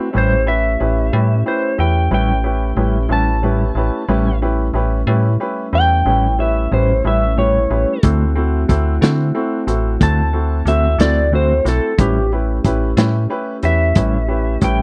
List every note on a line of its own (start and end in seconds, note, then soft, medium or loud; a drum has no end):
0.00 0.10 A3 medium
0.00 0.11 C4 medium
0.00 0.11 E4 medium
0.00 0.11 F#4 medium
0.00 0.12 E5 medium
0.13 0.77 A1 medium
0.13 0.34 A2 medium
0.13 0.34 G3 medium
0.13 4.06 A3 medium
0.13 0.38 C#4 medium
0.13 0.34 C#4 medium
0.13 4.06 C#4 medium
0.13 0.38 E4 medium
0.13 4.05 E4 medium
0.13 0.35 E4 medium
0.13 0.39 G4 soft
0.13 4.05 G4 medium
0.13 0.39 B4 medium
0.18 0.48 C5 medium
0.46 0.71 C#4 soft
0.46 0.72 E4 soft
0.46 0.72 G4 soft
0.46 0.72 B4 medium
0.46 1.43 E5 medium
0.80 1.11 A1 medium
0.80 1.05 C#4 soft
0.80 1.05 E4 soft
0.80 1.05 G4 soft
0.80 1.05 B4 medium
1.13 1.43 A2 medium
1.13 1.34 G3 soft
1.13 1.38 C#4 soft
1.13 1.33 C#4 soft
1.13 1.37 E4 soft
1.13 1.33 E4 soft
1.13 1.38 G4 soft
1.13 1.38 B4 medium
1.46 1.70 C#4 soft
1.46 1.71 E4 soft
1.46 1.71 G4 soft
1.46 1.71 B4 medium
1.46 1.79 C5 medium
1.78 2.09 E2 medium
1.78 2.03 C#4 soft
1.78 2.03 E4 soft
1.78 2.03 G4 soft
1.78 2.03 B4 soft
1.78 2.11 G5 medium
2.11 2.73 A1 medium
2.11 2.31 A2 medium
2.11 2.31 G3 medium
2.11 2.36 C#4 soft
2.11 2.32 C#4 medium
2.11 2.36 E4 soft
2.11 2.32 E4 medium
2.11 2.36 G4 soft
2.11 2.36 B4 medium
2.11 3.09 G5 medium
2.44 2.69 C#4 soft
2.44 2.69 E4 soft
2.44 2.69 G4 soft
2.44 2.69 B4 soft
2.76 3.07 A1 loud
2.76 2.96 A2 medium
2.76 2.97 G3 medium
2.76 3.02 C#4 medium
2.76 2.97 C#4 medium
2.76 3.02 E4 soft
2.76 2.98 E4 medium
2.76 3.02 G4 soft
2.76 3.02 B4 soft
3.09 3.71 A1 medium
3.09 3.30 G3 soft
3.09 3.30 C#4 soft
3.09 3.35 C#4 medium
3.09 3.29 E4 soft
3.09 3.35 E4 soft
3.09 3.35 G4 soft
3.09 3.35 B4 medium
3.09 4.39 A5 medium
3.43 3.63 A2 medium
3.43 3.63 G3 medium
3.43 3.68 C#4 soft
3.43 3.64 C#4 medium
3.43 3.68 E4 soft
3.43 3.64 E4 medium
3.43 3.68 G4 soft
3.43 3.68 B4 medium
3.75 3.91 A1 medium
3.75 4.01 C#4 medium
3.75 4.01 E4 soft
3.75 4.01 G4 soft
3.75 4.01 B4 medium
4.08 4.70 A1 medium
4.08 4.29 A2 medium
4.08 7.99 G3 medium
4.08 4.29 G3 medium
4.08 7.99 A3 medium
4.08 7.99 C#4 medium
4.08 4.33 C#4 medium
4.08 4.29 C#4 medium
4.08 7.99 E4 medium
4.08 4.33 E4 medium
4.08 4.29 E4 medium
4.08 4.33 G4 medium
4.08 4.33 B4 medium
4.42 4.66 C#4 medium
4.42 4.67 E4 medium
4.42 4.67 G4 medium
4.42 4.67 B4 medium
4.74 5.04 A1 medium
4.74 4.99 C#4 medium
4.74 4.99 E4 medium
4.74 4.99 G4 medium
4.74 5.00 B4 medium
5.07 5.37 A2 loud
5.07 5.28 G3 soft
5.07 5.32 C#4 medium
5.07 5.28 C#4 soft
5.07 5.27 E4 medium
5.07 5.32 E4 medium
5.07 5.32 G4 soft
5.07 5.32 B4 medium
5.40 5.65 C#4 medium
5.40 5.65 E4 soft
5.40 5.65 G4 soft
5.40 5.65 B4 medium
5.73 6.03 E2 medium
5.73 5.98 C#4 soft
5.73 5.98 E4 soft
5.73 5.98 G4 soft
5.73 5.98 B4 soft
5.73 6.38 G5 medium
6.06 6.68 A1 medium
6.06 6.26 A2 medium
6.06 6.26 G3 medium
6.06 6.31 C#4 soft
6.06 6.26 C#4 medium
6.06 6.31 E4 soft
6.06 6.27 E4 medium
6.06 6.31 G4 soft
6.06 6.31 B4 soft
6.39 6.64 C#4 soft
6.39 6.64 E4 soft
6.39 6.64 G4 soft
6.39 6.64 B4 medium
6.39 6.71 E5 medium
6.71 7.02 A1 medium
6.71 6.91 A2 medium
6.71 6.92 G3 soft
6.71 6.97 C#4 soft
6.71 6.92 C#4 medium
6.71 6.97 E4 soft
6.71 6.92 E4 medium
6.71 6.97 G4 soft
6.71 6.97 B4 soft
6.71 7.05 C5 medium
7.04 7.67 A1 medium
7.04 7.25 G3 soft
7.04 7.24 C#4 soft
7.04 7.30 C#4 soft
7.04 7.24 E4 soft
7.04 7.30 E4 soft
7.04 7.30 G4 soft
7.04 7.30 B4 medium
7.04 7.38 E5 medium
7.37 7.57 A2 medium
7.37 7.57 G3 medium
7.37 7.62 C#4 soft
7.37 7.58 C#4 medium
7.37 7.62 E4 soft
7.37 7.58 E4 medium
7.37 7.62 G4 soft
7.37 7.62 B4 soft
7.37 8.02 C#5 medium
7.70 7.86 A1 medium
7.70 7.95 C#4 soft
7.70 7.95 E4 soft
7.70 7.95 G4 soft
7.70 7.95 B4 medium
8.03 8.65 D2 medium
8.03 8.23 D3 medium
8.03 11.94 A3 medium
8.03 8.24 A3 medium
8.03 8.28 C4 medium
8.03 11.94 C4 medium
8.03 8.23 C4 medium
8.03 8.28 E4 soft
8.03 11.94 E4 medium
8.03 8.28 F#4 soft
8.03 11.94 F#4 medium
8.03 8.24 F#4 medium
8.03 8.28 A4 medium
8.03 kick loud
8.03 closed hi-hat medium
8.35 8.61 C4 medium
8.35 8.61 E4 soft
8.35 8.61 F#4 soft
8.35 8.61 A4 medium
8.69 8.99 D2 medium
8.69 8.94 C4 medium
8.69 8.94 E4 medium
8.69 8.94 F#4 medium
8.69 8.94 A4 medium
8.69 kick medium
8.69 closed hi-hat soft
9.01 9.32 D3 medium
9.01 9.23 A3 soft
9.01 9.26 C4 medium
9.01 9.22 C4 soft
9.01 9.26 E4 medium
9.01 9.27 F#4 soft
9.01 9.22 F#4 medium
9.01 9.26 A4 medium
9.01 snare medium
9.01 closed hi-hat medium
9.35 9.60 C4 medium
9.35 9.60 E4 medium
9.35 9.60 F#4 medium
9.35 9.59 A4 medium
9.67 9.98 A1 medium
9.67 9.92 C4 soft
9.67 9.92 E4 soft
9.67 9.92 F#4 soft
9.67 9.92 A4 medium
9.67 closed hi-hat medium
10.00 10.63 D2 medium
10.00 10.20 D3 medium
10.00 10.21 A3 medium
10.00 10.26 C4 soft
10.00 10.21 C4 medium
10.00 10.25 E4 soft
10.00 10.25 F#4 soft
10.00 10.21 F#4 medium
10.00 10.26 A4 medium
10.00 10.66 A5 medium
10.00 kick medium
10.00 closed hi-hat medium
10.33 10.58 C4 soft
10.33 10.58 E4 soft
10.33 10.58 F#4 soft
10.33 10.58 A4 medium
10.65 10.96 D2 medium
10.65 10.86 D3 medium
10.65 10.86 A3 medium
10.65 10.91 C4 soft
10.65 10.87 C4 medium
10.65 10.92 E4 soft
10.65 10.91 F#4 soft
10.65 10.87 F#4 medium
10.65 10.92 A4 medium
10.65 10.99 E5 medium
10.65 closed hi-hat medium
10.98 11.61 D2 medium
10.98 11.24 C4 soft
10.98 11.20 C4 soft
10.98 11.24 E4 soft
10.98 11.24 F#4 soft
10.98 11.20 F#4 soft
10.98 11.24 A4 medium
10.98 11.32 D5 medium
10.98 snare loud
10.98 closed hi-hat medium
11.03 11.21 A3 soft
11.31 11.52 D3 medium
11.31 11.52 A3 medium
11.31 11.57 C4 soft
11.31 11.52 C4 medium
11.31 11.57 E4 soft
11.31 11.57 F#4 soft
11.31 11.53 F#4 medium
11.31 11.57 A4 medium
11.31 11.66 C5 medium
11.65 11.80 B1 medium
11.65 11.90 C4 soft
11.65 11.90 E4 soft
11.65 11.90 F#4 soft
11.65 11.90 A4 medium
11.65 snare soft
11.65 closed hi-hat medium
11.69 11.99 A4 medium
11.98 12.60 A1 loud
11.98 12.18 A2 medium
11.98 12.18 G3 medium
11.98 12.32 G#3 medium
11.98 12.31 C4 medium
11.98 12.23 C#4 medium
11.98 12.18 C#4 medium
11.98 12.31 D4 soft
11.98 12.23 E4 soft
11.98 12.19 E4 medium
11.98 12.31 F4 medium
11.98 12.23 G4 soft
11.98 12.31 G4 medium
11.98 12.23 B4 medium
11.98 kick loud
11.98 closed hi-hat medium
12.32 14.82 A3 medium
12.32 12.56 C#4 soft
12.32 14.82 C#4 medium
12.32 14.82 E4 medium
12.32 12.56 E4 soft
12.32 14.82 G4 medium
12.32 12.56 G4 soft
12.32 12.56 B4 medium
12.64 12.94 A1 medium
12.64 12.89 C#4 medium
12.64 12.89 E4 medium
12.64 12.89 G4 medium
12.64 12.89 B4 medium
12.64 kick medium
12.64 closed hi-hat medium
12.97 13.27 A2 medium
12.97 13.17 G3 soft
12.97 13.22 C#4 medium
12.97 13.17 C#4 soft
12.97 13.16 E4 medium
12.97 13.22 E4 medium
12.97 13.22 G4 medium
12.97 13.22 B4 medium
12.97 snare loud
12.97 closed hi-hat medium
13.30 13.54 C#4 medium
13.30 13.54 E4 medium
13.30 13.55 G4 medium
13.30 13.55 B4 medium
13.63 13.93 E2 medium
13.63 13.88 C#4 soft
13.63 13.87 E4 soft
13.63 13.88 G4 soft
13.63 13.88 B4 soft
13.63 14.60 E5 medium
13.63 closed hi-hat medium
13.95 14.57 A1 medium
13.95 14.16 A2 medium
13.95 14.16 G3 medium
13.95 14.20 C#4 soft
13.95 14.16 C#4 medium
13.95 14.20 E4 soft
13.95 14.16 E4 medium
13.95 14.20 G4 soft
13.95 14.20 B4 soft
13.95 kick loud
13.95 closed hi-hat medium
14.28 14.53 C#4 soft
14.28 14.53 E4 soft
14.28 14.53 G4 soft
14.28 14.53 B4 soft
14.61 14.82 A1 medium
14.61 14.81 A2 medium
14.61 14.81 G3 medium
14.61 14.82 C#4 soft
14.61 14.82 C#4 medium
14.61 14.82 E4 soft
14.61 14.82 E4 medium
14.61 14.82 G4 soft
14.61 14.82 B4 soft
14.61 14.82 G5 medium
14.61 kick medium
14.61 closed hi-hat medium